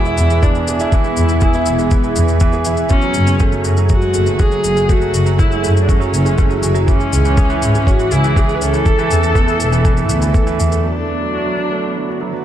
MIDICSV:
0, 0, Header, 1, 6, 480
1, 0, Start_track
1, 0, Key_signature, 3, "minor"
1, 0, Tempo, 495868
1, 893, Time_signature, 4, 2, 24, 8
1, 12051, End_track
2, 0, Start_track
2, 0, Title_t, "Ambient pad"
2, 0, Program_c, 0, 92
2, 0, Note_on_c, 0, 59, 71
2, 0, Note_on_c, 0, 64, 68
2, 0, Note_on_c, 0, 68, 82
2, 2772, Note_off_c, 0, 59, 0
2, 2773, Note_off_c, 0, 64, 0
2, 2817, Note_on_c, 0, 66, 61
2, 4716, Note_off_c, 0, 66, 0
2, 4746, Note_on_c, 0, 64, 68
2, 6640, Note_off_c, 0, 64, 0
2, 6657, Note_on_c, 0, 64, 66
2, 6662, Note_on_c, 0, 61, 76
2, 8533, Note_off_c, 0, 68, 0
2, 8558, Note_off_c, 0, 61, 0
2, 8580, Note_on_c, 0, 59, 70
2, 8584, Note_on_c, 0, 69, 82
2, 10457, Note_off_c, 0, 64, 0
2, 10478, Note_off_c, 0, 59, 0
2, 10479, Note_off_c, 0, 69, 0
2, 10494, Note_on_c, 0, 71, 73
2, 10497, Note_on_c, 0, 62, 59
2, 10497, Note_on_c, 0, 66, 59
2, 10500, Note_on_c, 0, 50, 61
2, 12051, Note_off_c, 0, 50, 0
2, 12051, Note_off_c, 0, 62, 0
2, 12051, Note_off_c, 0, 66, 0
2, 12051, Note_off_c, 0, 71, 0
2, 12051, End_track
3, 0, Start_track
3, 0, Title_t, "Viola"
3, 0, Program_c, 1, 41
3, 0, Note_on_c, 1, 64, 96
3, 409, Note_on_c, 1, 62, 84
3, 423, Note_off_c, 1, 64, 0
3, 898, Note_on_c, 1, 64, 81
3, 913, Note_off_c, 1, 62, 0
3, 1856, Note_off_c, 1, 64, 0
3, 2805, Note_on_c, 1, 61, 107
3, 3490, Note_off_c, 1, 61, 0
3, 3787, Note_on_c, 1, 66, 95
3, 4263, Note_on_c, 1, 68, 102
3, 4277, Note_off_c, 1, 66, 0
3, 4746, Note_on_c, 1, 66, 103
3, 4761, Note_off_c, 1, 68, 0
3, 5215, Note_on_c, 1, 64, 91
3, 5230, Note_off_c, 1, 66, 0
3, 5626, Note_off_c, 1, 64, 0
3, 5636, Note_on_c, 1, 62, 58
3, 5704, Note_on_c, 1, 61, 79
3, 5719, Note_off_c, 1, 62, 0
3, 6419, Note_off_c, 1, 61, 0
3, 6669, Note_on_c, 1, 61, 90
3, 7628, Note_on_c, 1, 66, 100
3, 7643, Note_off_c, 1, 61, 0
3, 7870, Note_on_c, 1, 64, 99
3, 7884, Note_off_c, 1, 66, 0
3, 8110, Note_on_c, 1, 68, 99
3, 8124, Note_off_c, 1, 64, 0
3, 8272, Note_on_c, 1, 71, 74
3, 8287, Note_off_c, 1, 68, 0
3, 8355, Note_on_c, 1, 69, 99
3, 8370, Note_off_c, 1, 71, 0
3, 10024, Note_off_c, 1, 69, 0
3, 10487, Note_on_c, 1, 62, 86
3, 11891, Note_off_c, 1, 62, 0
3, 12051, End_track
4, 0, Start_track
4, 0, Title_t, "Grand piano"
4, 0, Program_c, 2, 0
4, 0, Control_c, 2, 64, 127
4, 0, Note_on_c, 2, 52, 71
4, 0, Note_on_c, 2, 56, 73
4, 0, Note_on_c, 2, 59, 77
4, 0, Note_on_c, 2, 64, 91
4, 0, Note_on_c, 2, 68, 78
4, 63, Note_off_c, 2, 64, 0
4, 63, Note_on_c, 2, 64, 90
4, 127, Note_off_c, 2, 64, 0
4, 182, Note_off_c, 2, 52, 0
4, 182, Note_on_c, 2, 52, 72
4, 246, Note_off_c, 2, 52, 0
4, 303, Note_off_c, 2, 56, 0
4, 303, Note_on_c, 2, 56, 70
4, 366, Note_off_c, 2, 56, 0
4, 428, Note_off_c, 2, 59, 0
4, 428, Note_on_c, 2, 59, 74
4, 534, Note_off_c, 2, 59, 0
4, 546, Note_on_c, 2, 52, 68
4, 654, Note_off_c, 2, 52, 0
4, 664, Note_off_c, 2, 68, 0
4, 664, Note_on_c, 2, 68, 71
4, 727, Note_off_c, 2, 68, 0
4, 781, Note_on_c, 2, 64, 100
4, 845, Note_off_c, 2, 64, 0
4, 896, Note_on_c, 2, 52, 82
4, 963, Note_off_c, 2, 52, 0
4, 1018, Note_on_c, 2, 56, 75
4, 1084, Note_off_c, 2, 56, 0
4, 1143, Note_on_c, 2, 59, 65
4, 1252, Note_off_c, 2, 59, 0
4, 1262, Note_on_c, 2, 52, 68
4, 1372, Note_off_c, 2, 52, 0
4, 1381, Note_on_c, 2, 68, 75
4, 1445, Note_off_c, 2, 68, 0
4, 1498, Note_on_c, 2, 64, 92
4, 1564, Note_off_c, 2, 64, 0
4, 1617, Note_on_c, 2, 52, 70
4, 1683, Note_off_c, 2, 52, 0
4, 1732, Note_on_c, 2, 56, 73
4, 1801, Note_off_c, 2, 56, 0
4, 1851, Note_on_c, 2, 59, 76
4, 1966, Note_off_c, 2, 59, 0
4, 1973, Note_on_c, 2, 52, 71
4, 2080, Note_off_c, 2, 52, 0
4, 2095, Note_on_c, 2, 52, 69
4, 2200, Note_off_c, 2, 52, 0
4, 2215, Note_on_c, 2, 52, 69
4, 2321, Note_off_c, 2, 52, 0
4, 2335, Note_on_c, 2, 52, 92
4, 2448, Note_off_c, 2, 52, 0
4, 2454, Note_on_c, 2, 68, 90
4, 2568, Note_off_c, 2, 68, 0
4, 2573, Note_on_c, 2, 64, 88
4, 2641, Note_off_c, 2, 64, 0
4, 2692, Note_on_c, 2, 52, 70
4, 2807, Note_off_c, 2, 52, 0
4, 2807, Note_on_c, 2, 66, 78
4, 2825, Control_c, 2, 64, 0
4, 2879, Note_off_c, 2, 66, 0
4, 2934, Note_on_c, 2, 54, 94
4, 3013, Control_c, 2, 64, 127
4, 3038, Note_off_c, 2, 54, 0
4, 3053, Note_on_c, 2, 54, 68
4, 3121, Note_off_c, 2, 54, 0
4, 3169, Note_on_c, 2, 56, 71
4, 3240, Note_off_c, 2, 56, 0
4, 3287, Note_on_c, 2, 57, 77
4, 3404, Note_off_c, 2, 57, 0
4, 3412, Note_on_c, 2, 54, 66
4, 3527, Note_off_c, 2, 54, 0
4, 3529, Note_on_c, 2, 66, 72
4, 3600, Note_off_c, 2, 66, 0
4, 3656, Note_on_c, 2, 54, 89
4, 3757, Note_off_c, 2, 54, 0
4, 3771, Note_on_c, 2, 54, 80
4, 3841, Note_off_c, 2, 54, 0
4, 3891, Note_on_c, 2, 56, 70
4, 3960, Note_off_c, 2, 56, 0
4, 4007, Note_on_c, 2, 57, 68
4, 4124, Note_off_c, 2, 57, 0
4, 4132, Note_on_c, 2, 54, 70
4, 4247, Note_off_c, 2, 54, 0
4, 4251, Note_on_c, 2, 66, 75
4, 4321, Note_off_c, 2, 66, 0
4, 4373, Note_on_c, 2, 54, 84
4, 4475, Note_off_c, 2, 54, 0
4, 4489, Note_on_c, 2, 54, 72
4, 4559, Note_off_c, 2, 54, 0
4, 4613, Note_on_c, 2, 56, 68
4, 4681, Note_off_c, 2, 56, 0
4, 4729, Note_on_c, 2, 57, 81
4, 4845, Note_off_c, 2, 57, 0
4, 4853, Note_on_c, 2, 54, 76
4, 4967, Note_off_c, 2, 54, 0
4, 4976, Note_on_c, 2, 66, 73
4, 5043, Note_off_c, 2, 66, 0
4, 5089, Note_on_c, 2, 54, 99
4, 5199, Note_off_c, 2, 54, 0
4, 5213, Note_on_c, 2, 54, 77
4, 5281, Note_off_c, 2, 54, 0
4, 5327, Note_on_c, 2, 56, 70
4, 5399, Note_off_c, 2, 56, 0
4, 5442, Note_on_c, 2, 57, 74
4, 5561, Note_off_c, 2, 57, 0
4, 5569, Note_on_c, 2, 54, 69
4, 5685, Note_off_c, 2, 54, 0
4, 5686, Note_on_c, 2, 66, 79
4, 5758, Note_off_c, 2, 66, 0
4, 5808, Note_on_c, 2, 54, 93
4, 5918, Note_off_c, 2, 54, 0
4, 5932, Note_on_c, 2, 54, 68
4, 6001, Note_off_c, 2, 54, 0
4, 6051, Note_on_c, 2, 56, 72
4, 6120, Note_off_c, 2, 56, 0
4, 6170, Note_on_c, 2, 57, 74
4, 6285, Note_off_c, 2, 57, 0
4, 6289, Note_on_c, 2, 54, 74
4, 6405, Note_off_c, 2, 54, 0
4, 6410, Note_on_c, 2, 66, 69
4, 6480, Note_off_c, 2, 66, 0
4, 6528, Note_on_c, 2, 54, 100
4, 6644, Note_off_c, 2, 54, 0
4, 6647, Note_on_c, 2, 52, 84
4, 6664, Control_c, 2, 64, 0
4, 6718, Note_off_c, 2, 52, 0
4, 6775, Note_on_c, 2, 56, 76
4, 6841, Control_c, 2, 64, 127
4, 6842, Note_off_c, 2, 56, 0
4, 6898, Note_on_c, 2, 61, 72
4, 7010, Note_off_c, 2, 61, 0
4, 7021, Note_on_c, 2, 52, 75
4, 7131, Note_off_c, 2, 52, 0
4, 7138, Note_on_c, 2, 68, 75
4, 7204, Note_off_c, 2, 68, 0
4, 7259, Note_on_c, 2, 52, 101
4, 7364, Note_off_c, 2, 52, 0
4, 7378, Note_on_c, 2, 52, 71
4, 7444, Note_off_c, 2, 52, 0
4, 7500, Note_on_c, 2, 56, 73
4, 7565, Note_off_c, 2, 56, 0
4, 7619, Note_on_c, 2, 61, 81
4, 7730, Note_off_c, 2, 61, 0
4, 7741, Note_on_c, 2, 52, 68
4, 7851, Note_off_c, 2, 52, 0
4, 7858, Note_on_c, 2, 68, 72
4, 7924, Note_off_c, 2, 68, 0
4, 7977, Note_on_c, 2, 52, 94
4, 8084, Note_off_c, 2, 52, 0
4, 8099, Note_on_c, 2, 52, 82
4, 8164, Note_off_c, 2, 52, 0
4, 8219, Note_on_c, 2, 56, 73
4, 8284, Note_off_c, 2, 56, 0
4, 8332, Note_on_c, 2, 61, 73
4, 8447, Note_off_c, 2, 61, 0
4, 8453, Note_on_c, 2, 52, 76
4, 8567, Note_off_c, 2, 52, 0
4, 8576, Note_on_c, 2, 69, 82
4, 8587, Control_c, 2, 64, 0
4, 8643, Note_off_c, 2, 69, 0
4, 8700, Note_on_c, 2, 52, 96
4, 8753, Control_c, 2, 64, 127
4, 8806, Note_off_c, 2, 52, 0
4, 8820, Note_on_c, 2, 52, 74
4, 8885, Note_off_c, 2, 52, 0
4, 8929, Note_on_c, 2, 57, 68
4, 8999, Note_off_c, 2, 57, 0
4, 9050, Note_on_c, 2, 59, 84
4, 9166, Note_off_c, 2, 59, 0
4, 9168, Note_on_c, 2, 52, 74
4, 9284, Note_off_c, 2, 52, 0
4, 9287, Note_on_c, 2, 69, 78
4, 9358, Note_off_c, 2, 69, 0
4, 9410, Note_on_c, 2, 52, 92
4, 9518, Note_off_c, 2, 52, 0
4, 9533, Note_on_c, 2, 52, 83
4, 9601, Note_off_c, 2, 52, 0
4, 9657, Note_on_c, 2, 57, 75
4, 9723, Note_off_c, 2, 57, 0
4, 9771, Note_on_c, 2, 59, 71
4, 9886, Note_off_c, 2, 59, 0
4, 9892, Note_on_c, 2, 52, 72
4, 10007, Note_off_c, 2, 52, 0
4, 10011, Note_on_c, 2, 69, 76
4, 10080, Note_off_c, 2, 69, 0
4, 10133, Note_on_c, 2, 52, 92
4, 10238, Note_off_c, 2, 52, 0
4, 10253, Note_on_c, 2, 52, 77
4, 10321, Note_off_c, 2, 52, 0
4, 10378, Note_on_c, 2, 57, 75
4, 10444, Note_off_c, 2, 57, 0
4, 10490, Note_on_c, 2, 54, 63
4, 10505, Control_c, 2, 64, 0
4, 10560, Note_off_c, 2, 54, 0
4, 10611, Note_on_c, 2, 57, 57
4, 10680, Note_off_c, 2, 57, 0
4, 10692, Control_c, 2, 64, 127
4, 10736, Note_on_c, 2, 59, 57
4, 10848, Note_off_c, 2, 59, 0
4, 10851, Note_on_c, 2, 54, 54
4, 10966, Note_off_c, 2, 54, 0
4, 10969, Note_on_c, 2, 66, 63
4, 11039, Note_off_c, 2, 66, 0
4, 11093, Note_on_c, 2, 54, 73
4, 11192, Note_off_c, 2, 54, 0
4, 11207, Note_on_c, 2, 54, 58
4, 11278, Note_off_c, 2, 54, 0
4, 11332, Note_on_c, 2, 57, 55
4, 11401, Note_off_c, 2, 57, 0
4, 11449, Note_on_c, 2, 59, 59
4, 11565, Note_off_c, 2, 59, 0
4, 11570, Note_on_c, 2, 54, 57
4, 11686, Note_off_c, 2, 54, 0
4, 11694, Note_on_c, 2, 66, 60
4, 11762, Note_off_c, 2, 66, 0
4, 11816, Note_on_c, 2, 54, 74
4, 11919, Note_off_c, 2, 54, 0
4, 11934, Note_on_c, 2, 54, 62
4, 12002, Note_off_c, 2, 54, 0
4, 12051, End_track
5, 0, Start_track
5, 0, Title_t, "Double bass section"
5, 0, Program_c, 3, 48
5, 173, Note_on_c, 3, 40, 98
5, 368, Note_off_c, 3, 40, 0
5, 653, Note_on_c, 3, 40, 77
5, 848, Note_off_c, 3, 40, 0
5, 1130, Note_on_c, 3, 40, 93
5, 1326, Note_off_c, 3, 40, 0
5, 1614, Note_on_c, 3, 28, 75
5, 1808, Note_off_c, 3, 28, 0
5, 2089, Note_on_c, 3, 40, 93
5, 2285, Note_off_c, 3, 40, 0
5, 2570, Note_on_c, 3, 40, 71
5, 2766, Note_off_c, 3, 40, 0
5, 3047, Note_on_c, 3, 30, 86
5, 3245, Note_off_c, 3, 30, 0
5, 3533, Note_on_c, 3, 42, 80
5, 3727, Note_off_c, 3, 42, 0
5, 4014, Note_on_c, 3, 30, 97
5, 4208, Note_off_c, 3, 30, 0
5, 4497, Note_on_c, 3, 30, 75
5, 4689, Note_off_c, 3, 30, 0
5, 4974, Note_on_c, 3, 30, 84
5, 5168, Note_off_c, 3, 30, 0
5, 5457, Note_on_c, 3, 42, 78
5, 5650, Note_off_c, 3, 42, 0
5, 5935, Note_on_c, 3, 30, 99
5, 6128, Note_off_c, 3, 30, 0
5, 6418, Note_on_c, 3, 30, 76
5, 6610, Note_off_c, 3, 30, 0
5, 6897, Note_on_c, 3, 37, 90
5, 7090, Note_off_c, 3, 37, 0
5, 7375, Note_on_c, 3, 32, 76
5, 7568, Note_off_c, 3, 32, 0
5, 7852, Note_on_c, 3, 37, 99
5, 8047, Note_off_c, 3, 37, 0
5, 8333, Note_on_c, 3, 37, 80
5, 8527, Note_off_c, 3, 37, 0
5, 8809, Note_on_c, 3, 40, 92
5, 9005, Note_off_c, 3, 40, 0
5, 9292, Note_on_c, 3, 28, 79
5, 9768, Note_on_c, 3, 38, 88
5, 9772, Note_off_c, 3, 28, 0
5, 9965, Note_off_c, 3, 38, 0
5, 10248, Note_on_c, 3, 40, 89
5, 10445, Note_off_c, 3, 40, 0
5, 12051, End_track
6, 0, Start_track
6, 0, Title_t, "Drums"
6, 49, Note_on_c, 9, 82, 21
6, 146, Note_off_c, 9, 82, 0
6, 170, Note_on_c, 9, 82, 68
6, 267, Note_off_c, 9, 82, 0
6, 292, Note_on_c, 9, 82, 30
6, 389, Note_off_c, 9, 82, 0
6, 413, Note_on_c, 9, 82, 40
6, 414, Note_on_c, 9, 36, 105
6, 510, Note_off_c, 9, 82, 0
6, 511, Note_off_c, 9, 36, 0
6, 532, Note_on_c, 9, 82, 22
6, 629, Note_off_c, 9, 82, 0
6, 654, Note_on_c, 9, 82, 79
6, 751, Note_off_c, 9, 82, 0
6, 771, Note_on_c, 9, 82, 30
6, 868, Note_off_c, 9, 82, 0
6, 892, Note_on_c, 9, 82, 37
6, 894, Note_on_c, 9, 36, 99
6, 989, Note_off_c, 9, 82, 0
6, 990, Note_off_c, 9, 36, 0
6, 1009, Note_on_c, 9, 82, 19
6, 1106, Note_off_c, 9, 82, 0
6, 1129, Note_on_c, 9, 82, 73
6, 1225, Note_off_c, 9, 82, 0
6, 1247, Note_on_c, 9, 82, 32
6, 1344, Note_off_c, 9, 82, 0
6, 1362, Note_on_c, 9, 82, 40
6, 1375, Note_on_c, 9, 36, 105
6, 1459, Note_off_c, 9, 82, 0
6, 1471, Note_off_c, 9, 36, 0
6, 1486, Note_on_c, 9, 82, 20
6, 1583, Note_off_c, 9, 82, 0
6, 1605, Note_on_c, 9, 82, 70
6, 1701, Note_off_c, 9, 82, 0
6, 1731, Note_on_c, 9, 82, 29
6, 1827, Note_off_c, 9, 82, 0
6, 1847, Note_on_c, 9, 82, 40
6, 1854, Note_on_c, 9, 36, 95
6, 1944, Note_off_c, 9, 82, 0
6, 1951, Note_off_c, 9, 36, 0
6, 1971, Note_on_c, 9, 82, 20
6, 2068, Note_off_c, 9, 82, 0
6, 2089, Note_on_c, 9, 82, 73
6, 2186, Note_off_c, 9, 82, 0
6, 2208, Note_on_c, 9, 82, 30
6, 2305, Note_off_c, 9, 82, 0
6, 2325, Note_on_c, 9, 82, 40
6, 2334, Note_on_c, 9, 36, 95
6, 2421, Note_off_c, 9, 82, 0
6, 2431, Note_off_c, 9, 36, 0
6, 2444, Note_on_c, 9, 82, 22
6, 2541, Note_off_c, 9, 82, 0
6, 2563, Note_on_c, 9, 82, 75
6, 2660, Note_off_c, 9, 82, 0
6, 2681, Note_on_c, 9, 82, 29
6, 2778, Note_off_c, 9, 82, 0
6, 2799, Note_on_c, 9, 82, 38
6, 2813, Note_on_c, 9, 36, 91
6, 2896, Note_off_c, 9, 82, 0
6, 2909, Note_off_c, 9, 36, 0
6, 2920, Note_on_c, 9, 82, 18
6, 3016, Note_off_c, 9, 82, 0
6, 3038, Note_on_c, 9, 82, 72
6, 3135, Note_off_c, 9, 82, 0
6, 3166, Note_on_c, 9, 82, 29
6, 3262, Note_off_c, 9, 82, 0
6, 3289, Note_on_c, 9, 82, 38
6, 3294, Note_on_c, 9, 36, 105
6, 3386, Note_off_c, 9, 82, 0
6, 3391, Note_off_c, 9, 36, 0
6, 3410, Note_on_c, 9, 82, 19
6, 3507, Note_off_c, 9, 82, 0
6, 3526, Note_on_c, 9, 82, 64
6, 3623, Note_off_c, 9, 82, 0
6, 3649, Note_on_c, 9, 82, 28
6, 3746, Note_off_c, 9, 82, 0
6, 3766, Note_on_c, 9, 82, 40
6, 3774, Note_on_c, 9, 36, 101
6, 3863, Note_off_c, 9, 82, 0
6, 3871, Note_off_c, 9, 36, 0
6, 3888, Note_on_c, 9, 82, 19
6, 3984, Note_off_c, 9, 82, 0
6, 4007, Note_on_c, 9, 82, 65
6, 4104, Note_off_c, 9, 82, 0
6, 4128, Note_on_c, 9, 82, 29
6, 4224, Note_off_c, 9, 82, 0
6, 4251, Note_on_c, 9, 82, 38
6, 4255, Note_on_c, 9, 36, 101
6, 4348, Note_off_c, 9, 82, 0
6, 4352, Note_off_c, 9, 36, 0
6, 4371, Note_on_c, 9, 82, 21
6, 4468, Note_off_c, 9, 82, 0
6, 4492, Note_on_c, 9, 82, 69
6, 4589, Note_off_c, 9, 82, 0
6, 4614, Note_on_c, 9, 82, 28
6, 4711, Note_off_c, 9, 82, 0
6, 4737, Note_on_c, 9, 36, 90
6, 4737, Note_on_c, 9, 82, 36
6, 4834, Note_off_c, 9, 36, 0
6, 4834, Note_off_c, 9, 82, 0
6, 4854, Note_on_c, 9, 82, 18
6, 4951, Note_off_c, 9, 82, 0
6, 4976, Note_on_c, 9, 82, 68
6, 5073, Note_off_c, 9, 82, 0
6, 5094, Note_on_c, 9, 82, 28
6, 5191, Note_off_c, 9, 82, 0
6, 5218, Note_on_c, 9, 82, 36
6, 5219, Note_on_c, 9, 36, 92
6, 5315, Note_off_c, 9, 82, 0
6, 5316, Note_off_c, 9, 36, 0
6, 5340, Note_on_c, 9, 82, 20
6, 5437, Note_off_c, 9, 82, 0
6, 5459, Note_on_c, 9, 82, 64
6, 5556, Note_off_c, 9, 82, 0
6, 5584, Note_on_c, 9, 82, 28
6, 5681, Note_off_c, 9, 82, 0
6, 5700, Note_on_c, 9, 36, 95
6, 5703, Note_on_c, 9, 82, 39
6, 5797, Note_off_c, 9, 36, 0
6, 5799, Note_off_c, 9, 82, 0
6, 5822, Note_on_c, 9, 82, 19
6, 5919, Note_off_c, 9, 82, 0
6, 5942, Note_on_c, 9, 82, 63
6, 6039, Note_off_c, 9, 82, 0
6, 6058, Note_on_c, 9, 82, 29
6, 6155, Note_off_c, 9, 82, 0
6, 6176, Note_on_c, 9, 82, 40
6, 6180, Note_on_c, 9, 36, 95
6, 6273, Note_off_c, 9, 82, 0
6, 6277, Note_off_c, 9, 36, 0
6, 6297, Note_on_c, 9, 82, 19
6, 6394, Note_off_c, 9, 82, 0
6, 6417, Note_on_c, 9, 82, 74
6, 6514, Note_off_c, 9, 82, 0
6, 6536, Note_on_c, 9, 82, 27
6, 6633, Note_off_c, 9, 82, 0
6, 6660, Note_on_c, 9, 82, 35
6, 6661, Note_on_c, 9, 36, 93
6, 6757, Note_off_c, 9, 36, 0
6, 6757, Note_off_c, 9, 82, 0
6, 6779, Note_on_c, 9, 82, 18
6, 6876, Note_off_c, 9, 82, 0
6, 6900, Note_on_c, 9, 82, 66
6, 6997, Note_off_c, 9, 82, 0
6, 7019, Note_on_c, 9, 82, 28
6, 7116, Note_off_c, 9, 82, 0
6, 7137, Note_on_c, 9, 82, 35
6, 7139, Note_on_c, 9, 36, 100
6, 7234, Note_off_c, 9, 82, 0
6, 7236, Note_off_c, 9, 36, 0
6, 7258, Note_on_c, 9, 82, 18
6, 7355, Note_off_c, 9, 82, 0
6, 7379, Note_on_c, 9, 82, 65
6, 7475, Note_off_c, 9, 82, 0
6, 7500, Note_on_c, 9, 82, 27
6, 7597, Note_off_c, 9, 82, 0
6, 7617, Note_on_c, 9, 36, 95
6, 7623, Note_on_c, 9, 82, 37
6, 7714, Note_off_c, 9, 36, 0
6, 7720, Note_off_c, 9, 82, 0
6, 7738, Note_on_c, 9, 82, 19
6, 7835, Note_off_c, 9, 82, 0
6, 7855, Note_on_c, 9, 82, 63
6, 7951, Note_off_c, 9, 82, 0
6, 7976, Note_on_c, 9, 82, 28
6, 8073, Note_off_c, 9, 82, 0
6, 8096, Note_on_c, 9, 36, 94
6, 8101, Note_on_c, 9, 82, 38
6, 8193, Note_off_c, 9, 36, 0
6, 8198, Note_off_c, 9, 82, 0
6, 8219, Note_on_c, 9, 82, 20
6, 8316, Note_off_c, 9, 82, 0
6, 8340, Note_on_c, 9, 82, 66
6, 8437, Note_off_c, 9, 82, 0
6, 8457, Note_on_c, 9, 82, 27
6, 8554, Note_off_c, 9, 82, 0
6, 8575, Note_on_c, 9, 82, 36
6, 8576, Note_on_c, 9, 36, 88
6, 8671, Note_off_c, 9, 82, 0
6, 8672, Note_off_c, 9, 36, 0
6, 8699, Note_on_c, 9, 82, 18
6, 8795, Note_off_c, 9, 82, 0
6, 8817, Note_on_c, 9, 82, 66
6, 8913, Note_off_c, 9, 82, 0
6, 8938, Note_on_c, 9, 82, 29
6, 9035, Note_off_c, 9, 82, 0
6, 9055, Note_on_c, 9, 36, 98
6, 9057, Note_on_c, 9, 82, 37
6, 9152, Note_off_c, 9, 36, 0
6, 9153, Note_off_c, 9, 82, 0
6, 9177, Note_on_c, 9, 82, 19
6, 9274, Note_off_c, 9, 82, 0
6, 9295, Note_on_c, 9, 82, 68
6, 9392, Note_off_c, 9, 82, 0
6, 9415, Note_on_c, 9, 82, 26
6, 9512, Note_off_c, 9, 82, 0
6, 9534, Note_on_c, 9, 36, 94
6, 9534, Note_on_c, 9, 82, 41
6, 9631, Note_off_c, 9, 36, 0
6, 9631, Note_off_c, 9, 82, 0
6, 9652, Note_on_c, 9, 82, 20
6, 9749, Note_off_c, 9, 82, 0
6, 9771, Note_on_c, 9, 82, 71
6, 9868, Note_off_c, 9, 82, 0
6, 9892, Note_on_c, 9, 82, 29
6, 9989, Note_off_c, 9, 82, 0
6, 10013, Note_on_c, 9, 36, 98
6, 10014, Note_on_c, 9, 82, 39
6, 10110, Note_off_c, 9, 36, 0
6, 10111, Note_off_c, 9, 82, 0
6, 10135, Note_on_c, 9, 82, 21
6, 10232, Note_off_c, 9, 82, 0
6, 10256, Note_on_c, 9, 82, 71
6, 10353, Note_off_c, 9, 82, 0
6, 10378, Note_on_c, 9, 82, 30
6, 10475, Note_off_c, 9, 82, 0
6, 12051, End_track
0, 0, End_of_file